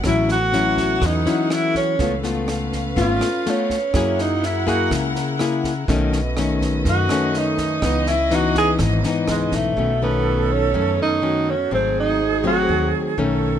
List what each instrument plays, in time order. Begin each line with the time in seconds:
Already playing: string section B3
0.04 upright bass A1, nylon-string guitar A2 F#3 C#4 E4, tenor saxophone E4, string section A4 C#5 F#5, kick, cross-stick, snare
0.29 tenor saxophone F#4, snare
0.53 nylon-string guitar F#3 C#4 E4, snare
0.77 kick, snare
1.02 upright bass E2, nylon-string guitar E3, kick, cross-stick, snare
1.06 tenor saxophone D#4
1.26 nylon-string guitar F#3 C#4 E4, snare
1.50 tenor saxophone E4, cross-stick, snare
1.75 tenor saxophone C#4, kick, snare
1.99 upright bass C#2, nylon-string guitar C#3 A3 B3 F4, string section C#4 B4 F5, kick, snare
2.23 nylon-string guitar A3 B3 F4, snare
2.48 cross-stick, snare
2.72 kick, snare
2.96 upright bass G#1, nylon-string guitar A3 B3 F4, tenor saxophone F4, kick, snare
3.21 cross-stick, snare
3.46 nylon-string guitar A3 B3 F4, snare
3.50 tenor saxophone C#4
3.70 kick, snare
3.94 upright bass F#2, nylon-string guitar F#3 A#3 E4 G#4, string section E4 G#4 A#4 F#5, kick, cross-stick, snare
4.19 tenor saxophone D#4, snare
4.43 tenor saxophone E4, snare
4.67 nylon-string guitar A#3 E4 G#4, tenor saxophone F#4, kick, snare
4.90 upright bass C#2, nylon-string guitar C#3, kick, cross-stick, snare
5.16 snare
5.39 nylon-string guitar A#3 E4 G#4, cross-stick, snare
5.64 kick, snare
5.88 upright bass B1, nylon-string guitar B2 D#3 A3 C#4, string section C#4 A4 B4 D#5, kick, snare
6.13 snare
6.37 nylon-string guitar D#3 A3 C#4, cross-stick, snare
6.61 kick, snare
6.85 upright bass F#2, nylon-string guitar F#2, tenor saxophone F#4, kick, snare
7.09 nylon-string guitar D#3 A3 C#4, cross-stick, snare
7.34 snare
7.38 tenor saxophone D#4
7.58 kick, snare
7.82 upright bass C#2, nylon-string guitar C#3 E3 B3 D#4, string section D#4 B4, kick, cross-stick, snare
8.06 tenor saxophone E4, snare
8.31 nylon-string guitar E3 B3 D#4, snare
8.35 tenor saxophone F#4
8.55 tenor saxophone G#4, kick, snare
8.79 upright bass G#1, nylon-string guitar G#2, kick, cross-stick, snare
9.04 nylon-string guitar E3 B3 D#4, snare
9.28 upright bass C#2, tenor saxophone G#3, cross-stick, snare
9.52 upright bass B1, tenor saxophone A3, kick, snare
9.76 upright bass B1, nylon-string guitar B2 D#3 A3 C#4, string section B3 D#4 A4 C#5, flute A4
10.02 nylon-string guitar D#3 A3 C#4, tenor saxophone B3
10.52 tenor saxophone C#4
10.74 upright bass F#2, nylon-string guitar F#2 D#3 A3 C#4
11.02 tenor saxophone D#4
11.22 nylon-string guitar D#3 A3 C#4, flute F#4
11.50 tenor saxophone C#4
11.71 upright bass G#1, nylon-string guitar G#2 F#3 A3 C4, string section A3 F#4 G#4 C5, tenor saxophone C4, flute G#4
12.00 tenor saxophone D#4
12.44 nylon-string guitar F#3 A3 C4, tenor saxophone F#4
12.69 upright bass D#2, nylon-string guitar D#3
13.18 upright bass B1, nylon-string guitar D#3 A3 C#4, string section B3 D#4 A4 C#5, flute A4